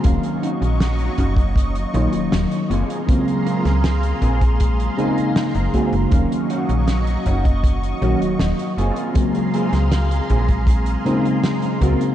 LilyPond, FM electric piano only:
\new Staff \with { instrumentName = "FM electric piano" } { \time 4/4 \key ges \lydian \tempo 4 = 79 <ees ges bes des' f''>2~ <ees ges bes des' f''>8 <ees ges bes des'>4 r8 | <des ges aes bes c'>2~ <des ges aes bes c'>8 <des aes bes c' ees'>4 <des aes bes c' ges'>16 r16 | <ees ges bes des' f''>2~ <ees ges bes des' f''>8 <ees ges bes des' ges'>4 r8 | <des ges aes bes c'>2~ <des ges aes bes c'>8 <des aes bes c' ees'>4 <des aes bes c' ges'>16 r16 | }